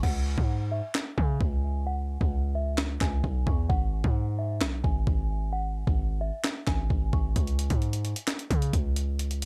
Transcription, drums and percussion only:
0, 0, Header, 1, 2, 480
1, 0, Start_track
1, 0, Key_signature, 4, "minor"
1, 0, Tempo, 458015
1, 34, Time_signature, 4, 2, 24, 8
1, 9906, End_track
2, 0, Start_track
2, 0, Title_t, "Drums"
2, 34, Note_on_c, 9, 36, 102
2, 34, Note_on_c, 9, 49, 95
2, 139, Note_off_c, 9, 36, 0
2, 139, Note_off_c, 9, 49, 0
2, 395, Note_on_c, 9, 36, 91
2, 499, Note_off_c, 9, 36, 0
2, 994, Note_on_c, 9, 38, 118
2, 995, Note_on_c, 9, 39, 97
2, 1098, Note_off_c, 9, 38, 0
2, 1100, Note_off_c, 9, 39, 0
2, 1233, Note_on_c, 9, 36, 95
2, 1338, Note_off_c, 9, 36, 0
2, 1473, Note_on_c, 9, 36, 94
2, 1578, Note_off_c, 9, 36, 0
2, 2315, Note_on_c, 9, 36, 91
2, 2419, Note_off_c, 9, 36, 0
2, 2913, Note_on_c, 9, 38, 116
2, 2915, Note_on_c, 9, 39, 97
2, 3018, Note_off_c, 9, 38, 0
2, 3019, Note_off_c, 9, 39, 0
2, 3153, Note_on_c, 9, 36, 91
2, 3155, Note_on_c, 9, 38, 103
2, 3156, Note_on_c, 9, 39, 84
2, 3258, Note_off_c, 9, 36, 0
2, 3260, Note_off_c, 9, 38, 0
2, 3261, Note_off_c, 9, 39, 0
2, 3394, Note_on_c, 9, 36, 94
2, 3498, Note_off_c, 9, 36, 0
2, 3634, Note_on_c, 9, 36, 97
2, 3739, Note_off_c, 9, 36, 0
2, 3874, Note_on_c, 9, 36, 108
2, 3979, Note_off_c, 9, 36, 0
2, 4235, Note_on_c, 9, 36, 95
2, 4340, Note_off_c, 9, 36, 0
2, 4835, Note_on_c, 9, 38, 117
2, 4836, Note_on_c, 9, 39, 97
2, 4940, Note_off_c, 9, 38, 0
2, 4941, Note_off_c, 9, 39, 0
2, 5074, Note_on_c, 9, 36, 96
2, 5178, Note_off_c, 9, 36, 0
2, 5314, Note_on_c, 9, 36, 90
2, 5419, Note_off_c, 9, 36, 0
2, 6154, Note_on_c, 9, 36, 92
2, 6259, Note_off_c, 9, 36, 0
2, 6752, Note_on_c, 9, 38, 118
2, 6754, Note_on_c, 9, 39, 94
2, 6857, Note_off_c, 9, 38, 0
2, 6859, Note_off_c, 9, 39, 0
2, 6992, Note_on_c, 9, 36, 92
2, 6994, Note_on_c, 9, 38, 102
2, 6995, Note_on_c, 9, 39, 81
2, 7097, Note_off_c, 9, 36, 0
2, 7099, Note_off_c, 9, 38, 0
2, 7100, Note_off_c, 9, 39, 0
2, 7233, Note_on_c, 9, 36, 93
2, 7338, Note_off_c, 9, 36, 0
2, 7473, Note_on_c, 9, 36, 97
2, 7578, Note_off_c, 9, 36, 0
2, 7713, Note_on_c, 9, 36, 102
2, 7713, Note_on_c, 9, 42, 77
2, 7818, Note_off_c, 9, 36, 0
2, 7818, Note_off_c, 9, 42, 0
2, 7833, Note_on_c, 9, 42, 53
2, 7938, Note_off_c, 9, 42, 0
2, 7953, Note_on_c, 9, 42, 78
2, 8058, Note_off_c, 9, 42, 0
2, 8072, Note_on_c, 9, 42, 55
2, 8073, Note_on_c, 9, 36, 90
2, 8177, Note_off_c, 9, 42, 0
2, 8178, Note_off_c, 9, 36, 0
2, 8193, Note_on_c, 9, 42, 43
2, 8298, Note_off_c, 9, 42, 0
2, 8312, Note_on_c, 9, 42, 69
2, 8417, Note_off_c, 9, 42, 0
2, 8433, Note_on_c, 9, 42, 58
2, 8538, Note_off_c, 9, 42, 0
2, 8554, Note_on_c, 9, 42, 80
2, 8658, Note_off_c, 9, 42, 0
2, 8673, Note_on_c, 9, 38, 117
2, 8674, Note_on_c, 9, 39, 92
2, 8674, Note_on_c, 9, 42, 82
2, 8778, Note_off_c, 9, 38, 0
2, 8778, Note_off_c, 9, 42, 0
2, 8779, Note_off_c, 9, 39, 0
2, 8794, Note_on_c, 9, 42, 61
2, 8899, Note_off_c, 9, 42, 0
2, 8913, Note_on_c, 9, 36, 93
2, 8915, Note_on_c, 9, 42, 70
2, 9018, Note_off_c, 9, 36, 0
2, 9020, Note_off_c, 9, 42, 0
2, 9035, Note_on_c, 9, 42, 54
2, 9139, Note_off_c, 9, 42, 0
2, 9153, Note_on_c, 9, 36, 94
2, 9154, Note_on_c, 9, 42, 87
2, 9258, Note_off_c, 9, 36, 0
2, 9259, Note_off_c, 9, 42, 0
2, 9394, Note_on_c, 9, 42, 78
2, 9499, Note_off_c, 9, 42, 0
2, 9635, Note_on_c, 9, 42, 77
2, 9740, Note_off_c, 9, 42, 0
2, 9755, Note_on_c, 9, 42, 51
2, 9860, Note_off_c, 9, 42, 0
2, 9906, End_track
0, 0, End_of_file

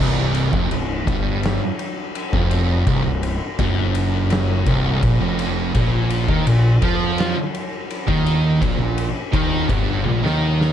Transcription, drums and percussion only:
0, 0, Header, 1, 2, 480
1, 0, Start_track
1, 0, Tempo, 718563
1, 1922, Time_signature, 4, 2, 24, 8
1, 7165, End_track
2, 0, Start_track
2, 0, Title_t, "Drums"
2, 231, Note_on_c, 9, 51, 77
2, 297, Note_off_c, 9, 51, 0
2, 354, Note_on_c, 9, 36, 110
2, 421, Note_off_c, 9, 36, 0
2, 474, Note_on_c, 9, 51, 101
2, 541, Note_off_c, 9, 51, 0
2, 717, Note_on_c, 9, 36, 112
2, 720, Note_on_c, 9, 51, 75
2, 783, Note_off_c, 9, 36, 0
2, 787, Note_off_c, 9, 51, 0
2, 957, Note_on_c, 9, 51, 94
2, 973, Note_on_c, 9, 38, 113
2, 1023, Note_off_c, 9, 51, 0
2, 1039, Note_off_c, 9, 38, 0
2, 1196, Note_on_c, 9, 51, 78
2, 1263, Note_off_c, 9, 51, 0
2, 1438, Note_on_c, 9, 51, 99
2, 1504, Note_off_c, 9, 51, 0
2, 1557, Note_on_c, 9, 36, 115
2, 1624, Note_off_c, 9, 36, 0
2, 1677, Note_on_c, 9, 51, 76
2, 1743, Note_off_c, 9, 51, 0
2, 1916, Note_on_c, 9, 51, 97
2, 1917, Note_on_c, 9, 36, 110
2, 1983, Note_off_c, 9, 36, 0
2, 1983, Note_off_c, 9, 51, 0
2, 2157, Note_on_c, 9, 51, 77
2, 2224, Note_off_c, 9, 51, 0
2, 2396, Note_on_c, 9, 51, 106
2, 2398, Note_on_c, 9, 36, 112
2, 2463, Note_off_c, 9, 51, 0
2, 2465, Note_off_c, 9, 36, 0
2, 2637, Note_on_c, 9, 51, 87
2, 2704, Note_off_c, 9, 51, 0
2, 2874, Note_on_c, 9, 51, 101
2, 2890, Note_on_c, 9, 38, 109
2, 2941, Note_off_c, 9, 51, 0
2, 2957, Note_off_c, 9, 38, 0
2, 3115, Note_on_c, 9, 51, 79
2, 3117, Note_on_c, 9, 36, 112
2, 3182, Note_off_c, 9, 51, 0
2, 3184, Note_off_c, 9, 36, 0
2, 3357, Note_on_c, 9, 51, 106
2, 3358, Note_on_c, 9, 36, 111
2, 3424, Note_off_c, 9, 51, 0
2, 3425, Note_off_c, 9, 36, 0
2, 3599, Note_on_c, 9, 51, 87
2, 3666, Note_off_c, 9, 51, 0
2, 3839, Note_on_c, 9, 36, 109
2, 3839, Note_on_c, 9, 51, 105
2, 3905, Note_off_c, 9, 51, 0
2, 3906, Note_off_c, 9, 36, 0
2, 4077, Note_on_c, 9, 51, 82
2, 4144, Note_off_c, 9, 51, 0
2, 4198, Note_on_c, 9, 36, 111
2, 4265, Note_off_c, 9, 36, 0
2, 4320, Note_on_c, 9, 51, 110
2, 4387, Note_off_c, 9, 51, 0
2, 4555, Note_on_c, 9, 51, 72
2, 4558, Note_on_c, 9, 36, 110
2, 4622, Note_off_c, 9, 51, 0
2, 4625, Note_off_c, 9, 36, 0
2, 4796, Note_on_c, 9, 51, 93
2, 4812, Note_on_c, 9, 38, 111
2, 4863, Note_off_c, 9, 51, 0
2, 4879, Note_off_c, 9, 38, 0
2, 5040, Note_on_c, 9, 51, 76
2, 5107, Note_off_c, 9, 51, 0
2, 5280, Note_on_c, 9, 51, 96
2, 5347, Note_off_c, 9, 51, 0
2, 5398, Note_on_c, 9, 36, 107
2, 5420, Note_on_c, 9, 38, 34
2, 5465, Note_off_c, 9, 36, 0
2, 5487, Note_off_c, 9, 38, 0
2, 5521, Note_on_c, 9, 51, 75
2, 5587, Note_off_c, 9, 51, 0
2, 5757, Note_on_c, 9, 36, 109
2, 5759, Note_on_c, 9, 51, 102
2, 5824, Note_off_c, 9, 36, 0
2, 5826, Note_off_c, 9, 51, 0
2, 5997, Note_on_c, 9, 51, 81
2, 6064, Note_off_c, 9, 51, 0
2, 6236, Note_on_c, 9, 36, 116
2, 6237, Note_on_c, 9, 51, 102
2, 6302, Note_off_c, 9, 36, 0
2, 6304, Note_off_c, 9, 51, 0
2, 6475, Note_on_c, 9, 36, 106
2, 6476, Note_on_c, 9, 51, 78
2, 6542, Note_off_c, 9, 36, 0
2, 6543, Note_off_c, 9, 51, 0
2, 6716, Note_on_c, 9, 48, 68
2, 6783, Note_off_c, 9, 48, 0
2, 6854, Note_on_c, 9, 38, 60
2, 6921, Note_off_c, 9, 38, 0
2, 7090, Note_on_c, 9, 38, 67
2, 7156, Note_off_c, 9, 38, 0
2, 7165, End_track
0, 0, End_of_file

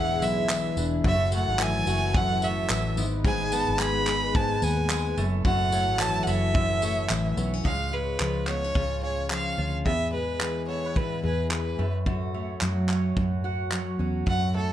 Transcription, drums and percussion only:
0, 0, Header, 1, 2, 480
1, 0, Start_track
1, 0, Key_signature, 3, "minor"
1, 0, Tempo, 550964
1, 911, Time_signature, 4, 2, 24, 8
1, 12830, End_track
2, 0, Start_track
2, 0, Title_t, "Drums"
2, 191, Note_on_c, 9, 54, 67
2, 278, Note_off_c, 9, 54, 0
2, 429, Note_on_c, 9, 54, 76
2, 432, Note_on_c, 9, 39, 111
2, 516, Note_off_c, 9, 54, 0
2, 519, Note_off_c, 9, 39, 0
2, 672, Note_on_c, 9, 54, 62
2, 759, Note_off_c, 9, 54, 0
2, 909, Note_on_c, 9, 36, 104
2, 996, Note_off_c, 9, 36, 0
2, 1148, Note_on_c, 9, 54, 73
2, 1235, Note_off_c, 9, 54, 0
2, 1388, Note_on_c, 9, 39, 127
2, 1389, Note_on_c, 9, 54, 77
2, 1475, Note_off_c, 9, 39, 0
2, 1476, Note_off_c, 9, 54, 0
2, 1628, Note_on_c, 9, 54, 70
2, 1715, Note_off_c, 9, 54, 0
2, 1869, Note_on_c, 9, 36, 112
2, 1956, Note_off_c, 9, 36, 0
2, 2108, Note_on_c, 9, 54, 67
2, 2196, Note_off_c, 9, 54, 0
2, 2347, Note_on_c, 9, 54, 81
2, 2350, Note_on_c, 9, 39, 118
2, 2434, Note_off_c, 9, 54, 0
2, 2437, Note_off_c, 9, 39, 0
2, 2590, Note_on_c, 9, 54, 66
2, 2677, Note_off_c, 9, 54, 0
2, 2827, Note_on_c, 9, 36, 100
2, 2914, Note_off_c, 9, 36, 0
2, 3065, Note_on_c, 9, 54, 72
2, 3152, Note_off_c, 9, 54, 0
2, 3304, Note_on_c, 9, 39, 126
2, 3307, Note_on_c, 9, 54, 79
2, 3391, Note_off_c, 9, 39, 0
2, 3394, Note_off_c, 9, 54, 0
2, 3547, Note_on_c, 9, 39, 90
2, 3548, Note_on_c, 9, 54, 67
2, 3634, Note_off_c, 9, 39, 0
2, 3635, Note_off_c, 9, 54, 0
2, 3789, Note_on_c, 9, 36, 116
2, 3876, Note_off_c, 9, 36, 0
2, 4026, Note_on_c, 9, 54, 67
2, 4113, Note_off_c, 9, 54, 0
2, 4264, Note_on_c, 9, 54, 82
2, 4268, Note_on_c, 9, 39, 119
2, 4351, Note_off_c, 9, 54, 0
2, 4355, Note_off_c, 9, 39, 0
2, 4508, Note_on_c, 9, 54, 60
2, 4595, Note_off_c, 9, 54, 0
2, 4746, Note_on_c, 9, 36, 103
2, 4833, Note_off_c, 9, 36, 0
2, 4985, Note_on_c, 9, 54, 72
2, 5072, Note_off_c, 9, 54, 0
2, 5222, Note_on_c, 9, 39, 121
2, 5226, Note_on_c, 9, 54, 86
2, 5309, Note_off_c, 9, 39, 0
2, 5313, Note_off_c, 9, 54, 0
2, 5462, Note_on_c, 9, 54, 68
2, 5549, Note_off_c, 9, 54, 0
2, 5705, Note_on_c, 9, 36, 116
2, 5793, Note_off_c, 9, 36, 0
2, 5942, Note_on_c, 9, 54, 67
2, 6029, Note_off_c, 9, 54, 0
2, 6182, Note_on_c, 9, 39, 116
2, 6184, Note_on_c, 9, 54, 80
2, 6269, Note_off_c, 9, 39, 0
2, 6271, Note_off_c, 9, 54, 0
2, 6423, Note_on_c, 9, 54, 63
2, 6510, Note_off_c, 9, 54, 0
2, 6664, Note_on_c, 9, 36, 94
2, 6752, Note_off_c, 9, 36, 0
2, 7144, Note_on_c, 9, 39, 109
2, 7231, Note_off_c, 9, 39, 0
2, 7380, Note_on_c, 9, 39, 81
2, 7467, Note_off_c, 9, 39, 0
2, 7626, Note_on_c, 9, 36, 98
2, 7713, Note_off_c, 9, 36, 0
2, 8106, Note_on_c, 9, 39, 101
2, 8193, Note_off_c, 9, 39, 0
2, 8588, Note_on_c, 9, 36, 94
2, 8675, Note_off_c, 9, 36, 0
2, 9066, Note_on_c, 9, 39, 113
2, 9153, Note_off_c, 9, 39, 0
2, 9550, Note_on_c, 9, 36, 103
2, 9637, Note_off_c, 9, 36, 0
2, 10029, Note_on_c, 9, 39, 104
2, 10116, Note_off_c, 9, 39, 0
2, 10509, Note_on_c, 9, 36, 94
2, 10596, Note_off_c, 9, 36, 0
2, 10988, Note_on_c, 9, 39, 111
2, 11075, Note_off_c, 9, 39, 0
2, 11228, Note_on_c, 9, 39, 84
2, 11316, Note_off_c, 9, 39, 0
2, 11471, Note_on_c, 9, 36, 106
2, 11558, Note_off_c, 9, 36, 0
2, 11950, Note_on_c, 9, 39, 95
2, 12037, Note_off_c, 9, 39, 0
2, 12430, Note_on_c, 9, 36, 97
2, 12517, Note_off_c, 9, 36, 0
2, 12830, End_track
0, 0, End_of_file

